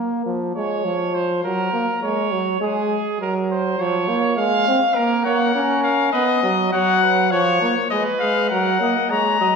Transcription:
0.00 0.24 A#3 medium
0.26 0.55 F3 medium
0.56 0.87 G#3 medium
0.56 1.16 C#5 medium
0.85 1.44 F3 medium
1.15 1.43 C5 medium
1.44 1.73 F#3 medium
1.44 2.02 A#4 medium
1.73 1.87 A#3 medium
2.02 2.33 G#3 medium
2.02 2.60 C#5 medium
2.32 2.60 F#3 medium
2.61 2.99 G#3 medium
2.61 3.19 G#4 medium
3.20 3.75 F#3 medium
3.20 3.34 A#4 medium
3.51 3.82 C5 medium
3.79 4.10 F3 medium
3.79 4.36 C#5 medium
4.09 4.39 A#3 medium
4.37 4.67 G#3 medium
4.37 4.96 F5 medium
4.68 4.81 C4 medium
4.95 5.25 A#3 medium
4.95 5.24 A#4 medium
5.24 5.55 A#3 medium
5.24 5.38 C#5 medium
5.24 5.79 F#5 loud
5.54 6.13 C#4 medium
5.54 6.12 A#4 medium
5.83 6.12 F5 medium
6.12 6.42 B3 medium
6.12 6.26 B4 medium
6.12 6.71 D#5 loud
6.42 6.72 F#3 medium
6.42 6.71 D#5 medium
6.72 7.33 F#3 medium
6.72 7.01 C#5 medium
6.72 7.33 F#5 loud
7.03 7.31 B4 medium
7.31 7.62 F3 medium
7.31 7.90 C#5 loud
7.31 7.69 C#5 medium
7.62 7.75 A#3 medium
7.90 8.05 G#3 medium
7.90 8.52 B4 medium
7.90 8.04 D#5 medium
8.20 8.51 G#3 medium
8.20 8.49 F5 loud
8.50 8.80 F#3 medium
8.50 8.81 A#4 medium
8.50 9.12 F#5 medium
8.81 8.95 A#3 medium
8.81 9.13 D#5 medium
9.10 9.40 G#3 medium
9.10 9.40 C#5 medium
9.10 9.56 A#5 medium
9.41 9.55 F#3 medium
9.41 9.54 D#5 medium

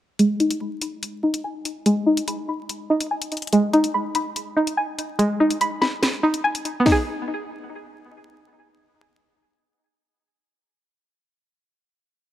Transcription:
0.19 1.44 G#3 medium
0.19 closed hi-hat medium
0.40 1.22 D#4 medium
0.40 closed hi-hat soft
0.50 closed hi-hat medium
0.61 0.81 B5 medium
0.81 2.07 B5 medium
0.81 closed hi-hat medium
1.03 closed hi-hat medium
1.23 2.05 D#4 medium
1.34 closed hi-hat medium
1.44 2.69 G#5 loud
1.65 closed hi-hat medium
1.86 3.11 G#3 loud
1.86 closed hi-hat medium
2.06 2.89 D#4 medium
2.17 closed hi-hat medium
2.28 2.47 B5 medium
2.28 closed hi-hat medium
2.49 3.53 B5 medium
2.69 closed hi-hat medium
2.90 3.53 D#4 medium
3.01 closed hi-hat medium
3.11 3.53 G#5 medium
3.22 closed hi-hat medium
3.32 closed hi-hat soft
3.37 closed hi-hat soft
3.42 closed hi-hat medium
3.47 closed hi-hat medium
3.53 4.78 G#3 loud
3.53 closed hi-hat medium
3.73 4.55 D#4 medium
3.73 closed hi-hat soft
3.84 closed hi-hat medium
3.94 4.14 B5 loud
4.15 5.40 B5 medium
4.15 closed hi-hat medium
4.36 closed hi-hat medium
4.57 5.39 D#4 medium
4.67 closed hi-hat medium
4.77 6.02 G#5 medium
4.99 closed hi-hat medium
5.19 6.44 G#3 loud
5.19 closed hi-hat medium
5.40 6.22 D#4 medium
5.50 closed hi-hat medium
5.61 5.80 B5 medium
5.61 closed hi-hat medium
5.81 6.86 B5 medium
5.81 snare medium
6.03 finger snap medium
6.03 snare loud
6.03 closed hi-hat medium
6.23 6.85 D#4 medium
6.34 closed hi-hat medium
6.44 6.86 G#5 medium
6.55 closed hi-hat medium
6.65 closed hi-hat medium
6.80 11.53 B3 medium
6.86 11.59 D#4 medium
6.86 kick loud
6.86 snare loud
6.86 open hi-hat medium
6.92 11.65 G#4 medium

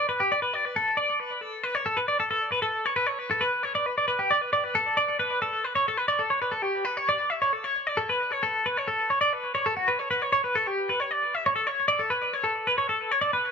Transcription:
0.09 0.20 B4 medium
0.20 0.31 G4 medium
0.32 0.42 D5 medium
0.42 0.54 B4 medium
0.54 0.65 D5 medium
0.65 0.76 B4 medium
0.76 0.98 A4 medium
0.97 1.20 D5 medium
1.20 1.41 B4 medium
1.41 1.64 A4 medium
1.64 1.75 B4 medium
1.75 1.86 C#5 medium
1.86 1.98 A4 medium
1.97 2.08 B4 medium
2.08 2.19 D5 medium
2.20 2.29 A4 medium
2.31 2.52 A4 medium
2.52 2.62 B4 medium
2.62 2.86 A4 medium
2.86 2.96 C#5 medium
2.96 3.06 B4 medium
3.06 3.19 C#5 medium
3.19 3.31 B4 medium
3.31 3.42 A4 medium
3.41 3.63 B4 medium
3.63 3.75 C#5 medium
3.75 3.86 D5 medium
3.86 3.97 B4 medium
3.98 4.07 D5 medium
4.08 4.20 B4 medium
4.19 4.31 G4 medium
4.31 4.41 D5 medium
4.41 4.52 B4 medium
4.53 4.64 D5 medium
4.64 4.76 B4 medium
4.75 4.98 A4 medium
4.97 5.19 D5 medium
5.19 5.42 B4 medium
5.42 5.64 A4 medium
5.64 5.75 B4 medium
5.75 5.87 C#5 medium
5.88 5.98 A4 medium
5.98 6.08 B4 medium
6.08 6.20 D5 medium
6.19 6.31 A4 medium
6.30 6.41 C#5 medium
6.42 6.53 B4 medium
6.52 6.62 A4 medium
6.62 6.85 G4 medium
6.85 6.97 B4 medium
6.97 7.09 C#5 medium
7.09 7.30 D5 medium
7.30 7.41 E5 medium
7.42 7.53 C#5 medium
7.53 7.64 A4 medium
7.64 7.87 C#5 medium
7.87 7.98 D5 medium
7.97 8.09 A4 medium
8.09 8.32 B4 medium
8.32 8.43 C#5 medium
8.43 8.65 A4 medium
8.66 8.77 B4 medium
8.77 8.88 C#5 medium
8.88 9.10 A4 medium
9.10 9.21 C#5 medium
9.21 9.33 D5 medium
9.33 9.54 B4 medium
9.55 9.66 C#5 medium
9.66 9.76 A4 medium
9.77 9.88 F#4 medium
9.88 9.99 B4 medium
9.99 10.10 C#5 medium
10.11 10.22 B4 medium
10.22 10.31 C#5 medium
10.33 10.44 C#5 medium
10.44 10.55 B4 medium
10.55 10.67 A4 medium
10.67 10.89 G4 medium
10.89 11.00 B4 medium
11.00 11.11 C#5 medium
11.11 11.35 D5 medium
11.35 11.45 E5 medium
11.46 11.55 C#5 medium
11.56 11.67 A4 medium
11.67 11.88 C#5 medium
11.88 12.00 D5 medium
11.99 12.11 A4 medium
12.10 12.33 B4 medium
12.34 12.45 C#5 medium
12.44 12.67 A4 medium
12.67 12.78 B4 medium
12.78 12.89 C#5 medium
12.89 13.12 A4 medium
13.12 13.21 C#5 medium
13.21 13.33 D5 medium
13.33 13.52 B4 medium

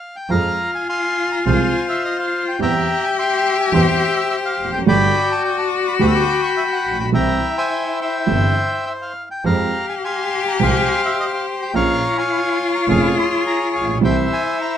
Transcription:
0.00 0.16 F5 medium
0.16 0.31 G5 medium
0.29 0.54 F2 medium
0.29 0.55 F3 medium
0.29 0.55 G#3 medium
0.29 0.55 C4 medium
0.29 2.61 F4 medium
0.29 0.55 G#4 medium
0.29 0.88 F5 medium
0.29 0.71 A#5 medium
0.75 0.88 G#5 medium
0.89 1.45 F5 medium
0.89 1.45 G#5 medium
0.89 1.29 C6 medium
1.32 1.38 A#5 medium
1.46 1.70 C2 medium
1.46 1.70 C3 medium
1.46 1.70 F3 medium
1.46 1.70 G#3 medium
1.46 1.70 C4 medium
1.46 1.70 G#4 medium
1.46 2.56 C5 medium
1.46 2.18 F5 medium
1.46 1.86 G#5 medium
1.89 2.04 E5 medium
2.05 2.17 D#5 medium
2.19 2.45 F5 medium
2.48 2.60 G5 medium
2.59 2.83 E2 medium
2.59 2.84 E2 medium
2.59 2.83 E3 medium
2.59 2.83 G3 medium
2.59 2.83 C4 medium
2.59 4.86 G4 loud
2.59 2.83 G4 medium
2.59 3.17 E5 medium
2.59 3.17 G5 medium
2.59 3.05 A#5 medium
3.05 3.11 G#5 medium
3.18 3.73 E5 medium
3.18 3.73 G5 medium
3.18 3.57 C6 medium
3.60 3.74 G#5 medium
3.72 3.96 E2 medium
3.72 3.96 E3 medium
3.72 3.96 G3 medium
3.72 3.96 C4 medium
3.72 3.96 G4 medium
3.72 4.83 C5 medium
3.72 4.15 E5 medium
3.72 4.17 G5 medium
4.16 4.28 E5 medium
4.30 4.36 E5 medium
4.46 4.71 F5 medium
4.58 4.86 F1 soft
4.64 4.72 E2 soft
4.72 4.79 F2 medium
4.72 4.79 G5 medium
4.79 4.86 F#2 medium
4.86 5.10 G1 medium
4.86 5.10 G2 medium
4.86 5.10 D3 medium
4.86 5.10 G3 medium
4.86 5.10 B3 medium
4.86 7.15 F#4 loud
4.86 5.10 G4 medium
4.86 5.96 D5 medium
4.86 5.43 G5 medium
4.86 5.31 B5 loud
5.31 5.43 A5 medium
5.45 5.57 G5 medium
5.58 5.71 A5 medium
5.88 5.93 B5 medium
5.99 6.23 D2 medium
5.99 6.24 D2 medium
5.99 6.23 D3 medium
5.99 6.23 G3 medium
5.99 6.23 B3 medium
5.99 6.23 G4 medium
5.99 6.99 G5 medium
5.99 7.10 B5 medium
5.99 6.07 D6 medium
6.07 6.14 E6 medium
6.15 6.41 D6 medium
6.43 6.50 C#6 medium
6.57 6.63 E5 medium
6.72 6.98 F#5 medium
6.86 7.13 A#1 soft
6.91 6.99 A1 soft
6.99 7.06 A#1 medium
6.99 7.06 G5 medium
7.05 7.13 B1 medium
7.12 7.37 C2 medium
7.12 7.37 C3 medium
7.12 7.36 E3 medium
7.12 7.37 G3 medium
7.12 7.37 C4 medium
7.12 9.15 E4 medium
7.12 7.37 G4 medium
7.12 7.57 E5 medium
7.12 7.99 G5 medium
7.12 7.58 A#5 medium
7.58 8.00 C5 medium
7.58 8.00 E5 medium
7.58 7.97 G#5 medium
8.01 9.13 C5 medium
8.01 8.85 E5 medium
8.01 8.90 G5 medium
8.26 8.51 G1 medium
8.26 8.53 G1 medium
8.26 8.51 G2 medium
8.26 8.51 E3 medium
8.26 8.51 G3 medium
8.26 8.52 C4 medium
8.26 8.52 G4 medium
8.87 8.93 E5 medium
9.02 9.29 F5 medium
9.31 9.44 G5 medium
9.44 9.69 F2 medium
9.44 9.69 F3 medium
9.44 9.69 G#3 medium
9.44 9.69 C4 medium
9.44 11.77 G4 loud
9.44 9.69 G#4 medium
9.44 10.04 F5 medium
9.44 9.86 A#5 medium
9.89 9.95 G#5 medium
10.05 10.62 F5 medium
10.05 10.61 G#5 medium
10.05 10.44 C6 medium
10.48 10.60 A#5 medium
10.59 10.84 C2 medium
10.59 10.84 C3 medium
10.59 10.84 F3 medium
10.59 10.84 G#3 medium
10.59 10.84 C4 medium
10.59 10.84 G#4 medium
10.59 11.72 C5 medium
10.59 11.32 F5 medium
10.59 11.02 G#5 medium
11.05 11.18 E5 medium
11.20 11.26 D#5 medium
11.34 11.46 F5 medium
11.62 11.75 G5 medium
11.74 11.98 A#1 medium
11.74 11.98 A#2 medium
11.74 11.98 F3 medium
11.74 11.99 A#3 medium
11.74 11.98 C#4 medium
11.74 14.04 F4 loud
11.74 11.99 G#4 medium
11.74 12.17 C#5 medium
11.74 12.17 F5 medium
11.74 12.19 A#5 medium
12.18 12.88 C#5 medium
12.18 12.88 F5 medium
12.18 12.71 G#5 medium
12.75 12.81 A#5 medium
12.88 13.12 F1 medium
12.88 13.12 F2 medium
12.88 13.12 F3 medium
12.88 13.12 A#3 medium
12.88 13.12 C#4 medium
12.88 13.12 G#4 medium
12.88 13.99 G#4 medium
12.88 13.98 C#5 medium
12.88 13.15 F5 medium
13.19 13.44 C6 medium
13.47 13.72 A#5 medium
13.74 14.01 A#1 medium
13.74 13.88 F5 medium
13.81 13.88 A1 soft
13.88 13.95 A#1 medium
13.94 14.02 B1 medium
14.01 14.26 C2 medium
14.01 14.25 C3 medium
14.01 14.25 E3 medium
14.01 14.25 G3 medium
14.01 14.25 C4 medium
14.01 14.78 E4 loud
14.01 14.26 G4 medium
14.01 14.78 C5 medium
14.01 14.78 E5 medium
14.01 14.17 G5 medium
14.33 14.58 G#5 medium
14.61 14.78 A#5 medium

